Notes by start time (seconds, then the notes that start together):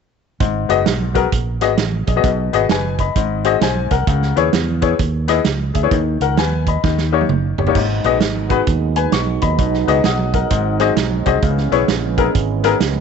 0.40 G#1 G#2, kick, closed hi-hat
0.69 F#1 B3 F#4 G#4 D#5, closed hi-hat
0.86 B1, snare, closed hi-hat
1.14 B3 F#4 G#4 A#4, kick, closed hi-hat
1.32 A#1, kick, closed hi-hat
1.61 G#1 B3 F#4 G#4 D#5, snare, closed hi-hat
1.78 A1, snare, closed hi-hat
2.07 A#1 G#4 D#5, kick, closed hi-hat
2.16 B3 F#4 G#4 D#5
2.24 B1 B2, kick, closed hi-hat
2.53 G#1 B3 F#4 G#4 D#5, closed hi-hat
2.69 F#1 B4 G#5, snare, closed hi-hat
2.99 D#5 B5, kick, closed hi-hat
3.16 G#1 G#2, kick, closed hi-hat
3.44 C4 F#4 G#4 D#5, closed hi-hat
3.61 B1 C5 G#5, snare, closed hi-hat
3.91 C2 A#4 F#5, kick, closed hi-hat
4.07 C#2 C#3, kick, closed hi-hat
4.22 snare
4.36 D#2 B3 E4 G#4 C#5, closed hi-hat
4.53 E2, snare, closed hi-hat
4.82 B3 E4 G#4 C#5, kick, closed hi-hat
4.99 D#2, kick, closed hi-hat
5.28 B3 E4 G#4 D#5, snare, closed hi-hat
5.45 C#2, snare, closed hi-hat
5.74 D2 G#4 E5, kick, closed hi-hat
5.83 B3 E4 G#4 C#5
5.91 D#2 D#3, kick, closed hi-hat
6.20 C#2 A#4 F#5, closed hi-hat
6.37 D#2 B4 G#5, snare, closed hi-hat
6.67 D#5 B5, kick, closed hi-hat
6.84 D#2 D#3, kick, snare
6.98 snare
7.12 A#3 D#4 G4 C#5
7.21 high tom
7.29 F#1, mid tom
7.58 G1 G4 C#5, floor tom
7.67 A#3 D#4 G4 C#5, floor tom
7.75 G#1 G#2 F#3 G#3 B3 D#4, kick, crash
8.04 A#1 B3 F#4 G#4 D#5, closed hi-hat
8.20 G#1, snare, closed hi-hat
8.49 B3 F#4 G#4 B4, kick, closed hi-hat
8.67 D#2, kick, closed hi-hat
8.96 B4 G#5, closed hi-hat
9.12 B1 C#6, snare, closed hi-hat
9.41 D#2 D#5 B5, kick, closed hi-hat
9.58 B1 B2 G#3, kick, closed hi-hat
9.74 snare
9.87 C#2 B3 F#4 G#4 D#5, closed hi-hat
10.04 B1 F#5 D#6, snare, closed hi-hat
10.34 A#4 F#5, kick, closed hi-hat
10.50 G#1 G#2 C4, kick, closed hi-hat
10.79 C4 F#4 G#4 D#5, snare, closed hi-hat
10.96 B1, snare, closed hi-hat
11.26 C2 C4 F#4 G#4 D#5, kick, closed hi-hat
11.43 C#2 C#3 E3 B3 C#4, kick, closed hi-hat
11.58 snare
11.71 B1 B3 E4 G#4 C#5, closed hi-hat
11.88 A#1, snare, closed hi-hat
12.17 B3 E4 G#4 A#4, kick, closed hi-hat
12.35 G#1, kick, closed hi-hat
12.64 B3 E4 G#4 A#4, snare, closed hi-hat
12.80 C#2, snare, closed hi-hat